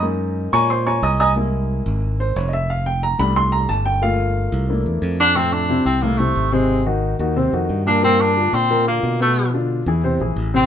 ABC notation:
X:1
M:4/4
L:1/8
Q:1/4=180
K:Gdor
V:1 name="Grand piano"
z3 [_d_ab_d'] [cc'] [dabd'] [_eab_e'] [eabe'] | z4 z c _d [_e=e] | f g b =b c' _b a g | f4 z4 |
[A,,A,A]2 [C,CE]2 [A,,A,A] [C,CE]2 [C,Cc]- | [C,Cc] [_E,_E_G]2 [E,EG] [C,Cc] [E,EG]2 [B,,B,B] | [B,,B,B]2 [D,DF]2 [B,,B,B] [D,DF]2 [=B,,=B,=B]- | [=B,,=B,=B] [D,DF]2 [E,E_A] [^B,,^B,^B] [E,E^G]2 [B,,B,B] |]
V:2 name="Grand piano"
[_A,B,_E]8 | [^G,B,E]8 | z3 [G,A,D]4- [G,A,D] | [A,B,F]4 [A,B,DE]3 z |
z8 | z8 | z8 | z8 |]
V:3 name="Tenor saxophone"
z8 | z8 | z8 | z6 z D |
C D2 C B, A,2 _A,- | _A, z6 D | C D2 C2 B,2 A,- | A, z6 ^B, |]
V:4 name="Fingered electric bass" clef=bass
_G,,3 B,,3 C,,2- | C,,3 ^G,,,3 F,,,2- | F,,,3 C,,3 G,,,2- | G,,,3 C,,2 E,, F,,2- |
F,,3 C,,3 _A,,,2- | _A,,,3 _E,,2 F,, G,,2- | G,,3 B,,3 =B,,2- | =B,,3 E,,2 _B,,, A,,,2 |]